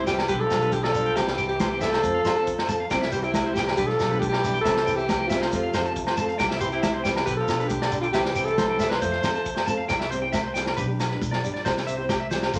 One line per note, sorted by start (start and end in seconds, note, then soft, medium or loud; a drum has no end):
0.00 0.18 C2 medium
0.06 0.20 G3 medium
0.06 0.20 C4 medium
0.06 0.21 E4 medium
0.06 0.27 G4 medium
0.06 0.21 G4 medium
0.06 0.14 G5 medium
0.06 snare medium
0.06 high conga medium
0.06 shekere medium
0.10 0.29 E3 medium
0.18 snare medium
0.18 low agogo medium
0.28 0.48 B1 medium
0.28 0.45 D3 medium
0.28 0.42 G3 medium
0.28 0.42 B3 medium
0.28 0.43 D4 medium
0.28 0.42 G4 medium
0.28 0.43 G4 medium
0.28 0.35 B4 medium
0.28 kick medium
0.28 muted conga soft
0.28 shekere medium
0.41 0.77 F3 medium
0.41 0.74 A4 loud
0.50 1.08 B1 medium
0.50 0.62 G3 medium
0.50 0.62 B3 medium
0.50 0.62 D4 medium
0.50 0.60 G4 medium
0.50 snare medium
0.50 muted conga soft
0.50 low agogo medium
0.50 shekere medium
0.61 0.76 B3 soft
0.61 0.75 D4 soft
0.61 0.74 G4 medium
0.61 0.68 B4 medium
0.61 shekere soft
0.72 0.89 D3 medium
0.72 0.85 G4 medium
0.72 kick medium
0.72 high conga medium
0.72 shekere medium
0.83 1.18 A4 loud
0.83 0.90 D5 medium
0.83 snare medium
0.83 low agogo medium
0.88 1.21 F3 medium
0.94 1.07 G3 medium
0.94 1.08 B3 medium
0.94 1.08 D4 medium
0.94 1.09 G4 medium
0.94 muted conga soft
0.94 shekere medium
1.05 1.12 G5 medium
1.05 shekere soft
1.16 1.93 C2 loud
1.16 1.29 G3 medium
1.16 1.30 C4 medium
1.16 1.48 G4 medium
1.16 1.31 G4 medium
1.16 muted clean electric guitar stroke medium
1.16 muted nylon-string guitar stroke medium
1.16 kick medium
1.16 snare medium
1.16 muted conga soft
1.16 low agogo medium
1.16 shekere medium
1.20 1.51 E3 medium
1.28 snare medium
1.37 1.51 G3 medium
1.37 1.52 C4 medium
1.37 1.53 G4 medium
1.37 1.44 G5 medium
1.37 muted nylon-string guitar stroke medium
1.37 shekere medium
1.48 1.84 G4 medium
1.48 muted clean electric guitar stroke medium
1.48 shekere soft
1.54 1.89 E3 medium
1.60 1.66 C5 medium
1.60 kick medium
1.60 snare medium
1.60 high conga medium
1.60 low conga medium
1.60 low agogo medium
1.60 shekere medium
1.70 1.82 C4 soft
1.70 1.82 E4 soft
1.70 1.81 G4 medium
1.70 1.77 G5 medium
1.81 1.95 G3 medium
1.81 1.95 C4 medium
1.81 1.96 E4 medium
1.81 1.96 G4 medium
1.81 2.69 A4 medium
1.81 1.88 E5 medium
1.81 snare medium
1.81 high conga medium
1.81 shekere medium
1.87 2.72 F3 medium
1.92 1.98 C5 medium
1.92 snare medium
1.92 low agogo medium
1.92 shekere soft
2.03 2.23 F2 medium
2.03 2.17 F3 medium
2.03 2.17 C4 medium
2.03 2.18 A4 medium
2.03 muted nylon-string guitar stroke medium
2.03 kick medium
2.03 muted conga soft
2.03 high conga medium
2.03 shekere medium
2.14 2.20 F5 medium
2.24 2.83 F2 medium
2.24 2.36 F3 medium
2.24 2.36 C4 medium
2.24 2.36 F4 medium
2.24 2.34 A4 medium
2.24 2.32 C5 medium
2.24 snare medium
2.24 muted conga soft
2.24 low agogo medium
2.24 shekere medium
2.36 2.51 C4 soft
2.36 2.50 F4 soft
2.36 2.49 A4 medium
2.36 2.43 A5 medium
2.36 shekere soft
2.47 kick medium
2.47 shekere medium
2.59 2.65 C5 medium
2.59 snare medium
2.59 low agogo medium
2.68 2.82 F3 medium
2.68 2.82 C4 medium
2.68 2.83 F4 medium
2.68 2.83 A4 medium
2.68 2.75 A5 medium
2.68 muted conga soft
2.68 high conga medium
2.68 shekere medium
2.80 2.86 F5 medium
2.90 3.67 C2 loud
2.90 3.03 G3 medium
2.90 3.04 C4 medium
2.90 3.04 E4 medium
2.90 3.05 G4 medium
2.90 2.97 G5 medium
2.90 kick medium
2.90 snare medium
2.90 muted conga soft
2.90 low agogo medium
2.90 shekere medium
3.02 3.08 E5 medium
3.02 snare medium
3.12 3.26 E3 medium
3.12 3.25 G3 medium
3.12 3.26 C4 medium
3.12 3.27 E4 medium
3.12 3.25 G4 medium
3.12 3.27 G4 medium
3.12 3.19 C5 medium
3.12 shekere medium
3.23 3.57 C3 medium
3.23 3.55 E4 medium
3.23 3.30 G5 medium
3.23 shekere soft
3.34 kick medium
3.34 snare medium
3.34 high conga loud
3.34 low agogo medium
3.34 shekere medium
3.44 3.57 C4 soft
3.44 3.56 E4 soft
3.44 3.55 G4 medium
3.44 3.52 C5 medium
3.54 3.75 E3 medium
3.54 3.69 G3 medium
3.54 3.70 E4 medium
3.54 3.76 G4 medium
3.54 3.63 G5 medium
3.54 snare medium
3.54 high conga medium
3.54 shekere medium
3.59 3.71 G4 medium
3.68 snare medium
3.68 low agogo medium
3.76 3.97 B1 medium
3.76 3.89 D3 medium
3.76 3.91 G3 medium
3.76 3.92 D4 medium
3.76 3.88 G4 medium
3.76 3.92 G4 medium
3.76 3.85 B4 medium
3.76 muted nylon-string guitar stroke medium
3.76 kick medium
3.76 muted conga soft
3.76 shekere medium
3.87 4.22 F3 medium
3.87 4.20 A4 loud
3.87 snare soft
3.99 4.57 B1 medium
3.99 4.10 G3 medium
3.99 4.11 B3 medium
3.99 4.11 D4 medium
3.99 4.09 G4 medium
3.99 snare medium
3.99 muted conga soft
3.99 low agogo medium
3.99 shekere medium
4.10 4.25 B3 soft
4.10 4.24 D4 soft
4.10 4.23 G4 medium
4.10 4.17 B4 medium
4.10 shekere soft
4.19 4.30 D3 medium
4.19 4.28 G4 medium
4.19 kick medium
4.19 high conga medium
4.19 shekere medium
4.29 4.61 E3 medium
4.29 4.61 G4 medium
4.29 muted clean electric guitar stroke medium
4.29 low agogo medium
4.33 snare medium
4.43 4.56 G3 medium
4.43 4.57 B3 medium
4.43 4.57 D4 medium
4.43 4.58 G4 medium
4.43 muted conga soft
4.43 shekere medium
4.54 4.60 G5 medium
4.54 shekere soft
4.61 4.96 E3 medium
4.61 4.78 G3 medium
4.61 4.97 A4 medium
4.61 4.71 E5 medium
4.65 5.42 C2 loud
4.65 4.79 C4 medium
4.65 4.79 E4 medium
4.65 4.79 G4 medium
4.65 kick medium
4.65 snare medium
4.65 muted conga soft
4.65 low agogo medium
4.65 shekere medium
4.75 4.82 C5 medium
4.75 snare medium
4.85 4.99 G3 medium
4.85 5.00 C4 medium
4.85 5.01 E4 medium
4.85 5.01 G4 medium
4.85 4.93 G5 medium
4.85 shekere medium
4.95 5.31 E3 medium
4.95 5.29 G4 loud
4.95 5.04 E5 medium
4.95 shekere soft
5.09 kick medium
5.09 snare medium
5.09 high conga loud
5.09 low conga medium
5.09 low agogo medium
5.09 shekere medium
5.19 5.30 C4 soft
5.19 5.31 E4 soft
5.19 5.30 G4 soft
5.19 5.26 G5 medium
5.27 6.17 C3 medium
5.27 5.44 G3 medium
5.27 6.16 F4 medium
5.27 5.37 E5 medium
5.27 snare medium
5.27 high conga medium
5.27 shekere medium
5.31 5.44 C4 medium
5.31 5.45 E4 medium
5.31 5.46 G4 medium
5.42 5.48 C5 medium
5.42 snare medium
5.42 low agogo medium
5.52 5.72 F2 medium
5.52 5.66 F3 medium
5.52 5.66 C4 medium
5.52 5.66 F4 medium
5.52 5.67 A4 medium
5.52 kick medium
5.52 muted conga soft
5.52 high conga medium
5.52 shekere medium
5.63 5.69 F5 medium
5.73 6.32 F2 medium
5.73 5.85 F3 medium
5.73 5.86 C4 medium
5.73 5.86 F4 medium
5.73 5.84 A4 medium
5.73 5.81 C5 medium
5.73 snare medium
5.73 muted conga soft
5.73 low agogo medium
5.73 shekere medium
5.85 6.00 C4 soft
5.85 5.99 F4 medium
5.85 5.98 A4 medium
5.85 5.92 A5 medium
5.85 shekere soft
5.96 kick medium
5.96 shekere medium
6.07 6.13 C5 medium
6.07 snare medium
6.07 low agogo medium
6.17 6.31 F3 medium
6.17 6.32 C4 medium
6.17 6.32 F4 medium
6.17 6.33 A4 medium
6.17 6.24 A5 medium
6.17 muted conga soft
6.17 high conga medium
6.17 shekere loud
6.29 6.35 F5 medium
6.29 shekere soft
6.39 7.16 C2 loud
6.39 6.53 G3 medium
6.39 6.54 E4 medium
6.39 6.55 G4 medium
6.39 6.46 G5 medium
6.39 muted nylon-string guitar stroke medium
6.39 kick medium
6.39 snare medium
6.39 muted conga soft
6.39 low agogo medium
6.39 shekere medium
6.50 6.56 E5 medium
6.50 snare medium
6.60 6.72 E3 medium
6.60 6.75 C4 medium
6.60 6.76 E4 medium
6.60 6.71 G4 medium
6.60 6.76 G4 medium
6.60 6.67 C5 medium
6.60 shekere medium
6.72 7.03 C3 medium
6.72 7.03 E4 medium
6.72 6.78 G5 medium
6.72 shekere soft
6.83 6.89 E5 medium
6.83 kick medium
6.83 snare medium
6.83 high conga medium
6.83 low agogo medium
6.83 shekere medium
6.94 7.04 C4 soft
6.94 7.06 E4 soft
6.94 7.05 G4 soft
6.94 7.00 C5 medium
7.04 7.26 E3 medium
7.04 7.18 G3 medium
7.04 7.19 C4 medium
7.04 7.19 E4 medium
7.04 7.24 G4 medium
7.04 7.11 G5 medium
7.04 snare medium
7.04 high conga medium
7.04 shekere loud
7.08 7.20 G4 medium
7.16 snare medium
7.16 low agogo medium
7.25 7.46 B1 medium
7.25 7.39 D3 medium
7.25 7.40 B3 medium
7.25 7.36 G4 medium
7.25 7.41 G4 medium
7.25 7.33 B4 medium
7.25 muted nylon-string guitar stroke medium
7.25 kick medium
7.25 muted conga soft
7.25 shekere medium
7.37 7.72 F3 medium
7.37 7.69 A4 medium
7.48 8.06 B1 medium
7.48 7.60 B3 medium
7.48 7.61 D4 medium
7.48 muted nylon-string guitar stroke medium
7.48 snare medium
7.48 muted conga soft
7.48 low agogo medium
7.48 shekere medium
7.59 7.74 D4 soft
7.59 7.73 G4 medium
7.59 7.66 B4 medium
7.59 shekere soft
7.68 8.03 D3 medium
7.68 8.00 G4 medium
7.68 kick medium
7.68 high conga medium
7.68 shekere medium
7.82 7.88 D5 medium
7.82 snare medium
7.82 low agogo medium
7.90 8.05 B3 medium
7.90 8.06 D4 medium
7.90 8.07 G4 medium
7.90 muted conga soft
7.90 shekere medium
8.01 8.08 D3 medium
8.01 8.06 F4 medium
8.01 8.09 G5 medium
8.01 shekere soft
8.12 8.91 C2 medium
8.12 8.46 E3 medium
8.12 8.27 G3 medium
8.12 8.27 C4 medium
8.12 8.28 E4 medium
8.12 8.46 G4 medium
8.12 8.28 G4 medium
8.12 8.20 E5 medium
8.12 kick medium
8.12 snare medium
8.12 muted conga soft
8.12 low agogo medium
8.12 shekere medium
8.25 snare medium
8.35 8.49 G3 medium
8.35 8.50 C4 medium
8.35 8.51 E4 medium
8.35 8.51 G4 medium
8.35 8.43 G5 medium
8.35 shekere loud
8.45 8.90 E3 medium
8.45 8.89 A4 loud
8.45 muted clean electric guitar stroke medium
8.45 shekere soft
8.58 8.65 C5 medium
8.58 kick medium
8.58 snare medium
8.58 high conga loud
8.58 low conga medium
8.58 low agogo medium
8.58 shekere medium
8.68 8.79 C4 soft
8.68 8.81 E4 soft
8.68 8.80 G4 soft
8.68 8.76 G5 medium
8.79 8.93 G3 medium
8.79 8.94 C4 medium
8.79 8.95 E4 medium
8.79 8.95 G4 medium
8.79 8.86 E5 medium
8.79 snare medium
8.79 high conga medium
8.79 shekere loud
8.89 9.01 G3 medium
8.89 9.00 B4 medium
8.89 8.97 C5 medium
8.89 snare medium
8.89 low agogo medium
9.00 9.22 F2 medium
9.00 9.64 A3 medium
9.00 9.15 F4 medium
9.00 9.16 A4 medium
9.00 9.64 C5 loud
9.00 muted nylon-string guitar stroke medium
9.00 kick medium
9.00 muted conga soft
9.00 high conga medium
9.00 shekere medium
9.12 9.18 F5 medium
9.12 snare soft
9.22 9.82 F2 medium
9.22 9.34 C4 medium
9.22 9.35 F4 medium
9.22 9.33 A4 medium
9.22 9.29 C5 medium
9.22 snare medium
9.22 muted conga soft
9.22 low conga medium
9.22 low agogo medium
9.22 shekere medium
9.34 9.50 F4 soft
9.34 9.48 A4 medium
9.34 9.40 A5 medium
9.34 shekere soft
9.46 kick medium
9.46 shekere medium
9.56 9.62 C5 medium
9.56 snare medium
9.56 low agogo medium
9.66 9.81 C4 medium
9.66 9.82 F4 medium
9.66 9.82 A4 medium
9.66 9.73 A5 medium
9.66 high conga medium
9.66 shekere medium
9.77 9.84 F5 medium
9.88 10.66 C2 medium
9.88 10.02 G3 medium
9.88 10.03 E4 medium
9.88 10.04 G4 medium
9.88 9.95 G5 medium
9.88 muted nylon-string guitar stroke medium
9.88 kick medium
9.88 snare medium
9.88 muted conga soft
9.88 low agogo medium
9.88 shekere medium
10.00 10.06 E5 medium
10.00 snare medium
10.10 10.22 G3 medium
10.10 10.23 C4 medium
10.10 10.21 G4 medium
10.10 10.17 C5 medium
10.10 muted nylon-string guitar stroke medium
10.10 muted conga soft
10.10 shekere medium
10.22 10.37 C4 soft
10.22 10.36 E4 soft
10.22 10.36 G4 medium
10.22 10.28 G5 medium
10.33 10.39 E5 medium
10.33 kick medium
10.33 snare medium
10.33 high conga medium
10.33 low agogo medium
10.33 shekere medium
10.44 10.50 C5 medium
10.54 10.69 G3 medium
10.54 10.70 C4 medium
10.54 10.70 E4 medium
10.54 10.61 G5 medium
10.54 snare medium
10.54 muted conga soft
10.54 shekere medium
10.59 10.71 G4 medium
10.66 snare medium
10.66 low agogo medium
10.77 11.16 B1 medium
10.77 10.89 B3 medium
10.77 10.89 D4 medium
10.77 10.87 G4 medium
10.77 10.83 B4 medium
10.77 kick medium
10.77 muted conga soft
10.77 shekere medium
10.88 11.03 D4 soft
10.88 11.01 G4 medium
11.00 snare medium
11.00 low agogo medium
11.00 shekere medium
11.10 11.25 D4 soft
11.10 11.24 G4 medium
11.10 11.16 B4 medium
11.10 snare soft
11.22 11.41 B1 medium
11.22 kick medium
11.22 high conga medium
11.22 shekere medium
11.31 11.38 D5 medium
11.31 snare medium
11.31 low agogo medium
11.42 11.63 G2 medium
11.42 11.56 B3 medium
11.42 11.57 D4 medium
11.42 11.58 G4 medium
11.42 shekere medium
11.54 11.60 D5 medium
11.54 snare soft
11.65 12.43 C2 medium
11.65 11.79 G3 medium
11.65 11.79 C4 medium
11.65 11.80 E4 medium
11.65 11.80 G4 medium
11.65 11.71 C5 medium
11.65 kick medium
11.65 snare medium
11.65 muted conga soft
11.65 low agogo medium
11.65 shekere medium
11.77 snare medium
11.87 11.99 C4 medium
11.87 11.97 G4 medium
11.87 11.93 E5 medium
11.87 muted nylon-string guitar stroke medium
11.87 muted conga soft
11.87 shekere medium
11.97 12.13 E4 soft
11.97 12.12 G4 medium
11.97 12.04 C5 medium
12.01 12.13 C4 soft
12.09 12.16 G4 medium
12.09 kick medium
12.09 snare medium
12.09 high conga medium
12.09 low agogo medium
12.09 shekere medium
12.20 12.26 E5 medium
12.31 12.45 G3 medium
12.31 12.46 C4 medium
12.31 12.46 E4 medium
12.31 12.47 G4 medium
12.31 12.37 C5 medium
12.31 snare medium
12.31 muted conga soft
12.31 high conga medium
12.31 low conga medium
12.31 shekere medium
12.42 12.49 G4 medium
12.42 snare medium
12.42 low agogo medium
12.53 12.59 F2 medium
12.53 12.59 F3 medium
12.53 12.59 C4 medium
12.53 12.59 F4 medium
12.53 12.59 A4 medium
12.53 kick medium
12.53 muted conga soft
12.53 shekere medium